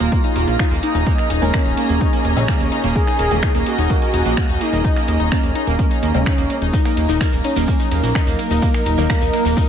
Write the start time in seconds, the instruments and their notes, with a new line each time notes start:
Already playing: string section C#4 G#4 A#5, analog synth lead F4
0.00 analog synth bass D#1, synth pluck A#3, closed hi-hat
0.12 synth pluck A#3, string section D#5, kick, closed hi-hat
0.24 synth pluck D#4, closed hi-hat
0.36 analog synth bass D#1, synth pluck A#3, closed hi-hat
0.47 analog synth bass A#1, synth pluck A#3, closed hi-hat
0.59 synth pluck D#4, finger snap, kick, closed hi-hat
0.71 analog synth bass D#1, synth pluck A#3, closed hi-hat
0.83 synth pluck A#3, analog synth lead D#4, closed hi-hat
0.95 analog synth bass D#1, synth pluck D#4, closed hi-hat
1.06 synth pluck A#3, kick, closed hi-hat
1.18 synth pluck A#3, finger snap, closed hi-hat
1.30 analog synth bass D#1, synth pluck D#4, closed hi-hat
1.42 analog synth bass D#1, synth stab C#3 G#3 C#4, synth pluck A#3, closed hi-hat
1.54 synth pluck A#3, analog synth lead C#4, finger snap, kick, closed hi-hat
1.66 analog synth bass D#1, synth pluck D#4, closed hi-hat
1.77 synth pluck A#3, closed hi-hat
1.89 analog synth bass D#1, synth pluck A#3, closed hi-hat
2.01 synth pluck D#4, kick, closed hi-hat
2.13 synth pluck A#3, closed hi-hat
2.25 analog synth bass D#1, synth pluck A#3, closed hi-hat
2.36 analog synth bass A#1, synth stab C#3 G#3 C#4, synth pluck D#4, closed hi-hat
2.48 synth pluck A#3, finger snap, kick, closed hi-hat
2.60 analog synth bass D#1, synth pluck A#3, closed hi-hat
2.72 synth pluck D#4, closed hi-hat
2.84 analog synth bass D#1, synth pluck A#3, closed hi-hat
2.95 synth pluck A#3, analog synth lead G#4, kick, closed hi-hat
3.07 synth pluck D#4, finger snap, closed hi-hat
3.19 analog synth bass D#1, synth pluck A#3, closed hi-hat
3.31 analog synth bass D#1, synth stab C#3 G#3 C#4, synth pluck A#3, closed hi-hat
3.43 synth pluck D#4, finger snap, kick, closed hi-hat
3.55 analog synth bass D#1, synth pluck A#3, closed hi-hat
3.66 synth pluck A#3, analog synth lead F#4, closed hi-hat
3.78 analog synth bass D#1, synth pluck D#4, closed hi-hat
3.90 synth pluck A#3, kick, closed hi-hat
4.02 synth pluck A#3, closed hi-hat
4.14 analog synth bass D#1, synth pluck D#4, closed hi-hat
4.25 analog synth bass A#1, synth pluck A#3, closed hi-hat
4.37 synth pluck A#3, finger snap, kick, closed hi-hat
4.49 analog synth bass D#1, synth pluck D#4, closed hi-hat
4.61 synth pluck A#3, analog synth lead D#4, closed hi-hat
4.73 analog synth bass D#1, synth pluck A#3, closed hi-hat
4.84 synth pluck D#4, kick, closed hi-hat
4.96 synth pluck A#3, finger snap, closed hi-hat
5.08 analog synth bass D#1, synth pluck A#3, closed hi-hat
5.20 analog synth bass D#1, synth pluck D#4, closed hi-hat
5.32 synth pluck A#3, analog synth lead C#4, finger snap, kick, closed hi-hat
5.43 analog synth bass D#1, synth pluck A#3, closed hi-hat
5.55 synth pluck D#4, closed hi-hat
5.67 analog synth bass D#1, synth pluck A#3, closed hi-hat
5.79 synth pluck A#3, kick, closed hi-hat
5.91 synth pluck D#4, closed hi-hat
6.03 analog synth bass D#2, synth pluck A#3, closed hi-hat
6.14 analog synth bass D#1, synth stab C#3 G#3 C#4, synth pluck A#3, closed hi-hat
6.26 synth pluck D#4, finger snap, kick, closed hi-hat
6.38 analog synth bass D#1, synth pluck A#3, closed hi-hat
6.50 synth pluck A#3, closed hi-hat
6.62 analog synth bass D#1, synth pluck D#4, closed hi-hat
6.73 analog synth pad F#3 A#4 D#5 A#5, string section D#4, synth pluck D#4, analog synth lead D#4, kick, closed hi-hat, ride, shekere
6.85 synth pluck A#3, finger snap, closed hi-hat, shekere
6.97 analog synth bass D#1, synth pluck A#3, closed hi-hat, ride
7.09 analog synth bass D#1, synth stab D#3 A#3 D#4, synth pluck D#4, closed hi-hat, shekere
7.13 string section A#4
7.21 synth pluck A#3, finger snap, kick, closed hi-hat, ride, shekere
7.33 analog synth bass D#1, synth pluck A#3, closed hi-hat, shekere
7.44 analog synth lead C#4, synth pluck D#4, closed hi-hat, ride
7.56 analog synth bass D#1, synth pluck A#3, closed hi-hat, shekere
7.68 synth pluck A#3, kick, closed hi-hat, ride, shekere
7.80 synth pluck D#4, closed hi-hat, shekere
7.91 analog synth bass D#1, synth pluck A#3, closed hi-hat, ride
8.03 analog synth bass A#1, synth pluck A#3, closed hi-hat, shekere
8.15 synth pluck D#4, finger snap, kick, closed hi-hat, ride, shekere
8.27 analog synth bass D#1, synth pluck A#3, closed hi-hat, shekere
8.39 synth pluck A#3, analog synth lead A#3, closed hi-hat, ride
8.51 analog synth bass D#1, synth pluck D#4, closed hi-hat, shekere
8.62 synth pluck A#3, kick, closed hi-hat, ride, shekere
8.74 synth pluck A#3, finger snap, closed hi-hat, shekere
8.86 analog synth bass D#1, synth pluck D#4, closed hi-hat, ride
8.98 analog synth bass D#1, synth stab D#3 A#3 D#4, synth pluck A#3, closed hi-hat, shekere
9.10 synth pluck A#3, analog synth lead A#3, finger snap, kick, closed hi-hat, ride, shekere
9.21 analog synth bass D#1, synth pluck D#4, closed hi-hat, shekere
9.33 synth pluck A#3, closed hi-hat, ride
9.45 analog synth bass D#1, synth pluck A#3, closed hi-hat, shekere
9.57 synth pluck D#4, kick, closed hi-hat, ride, shekere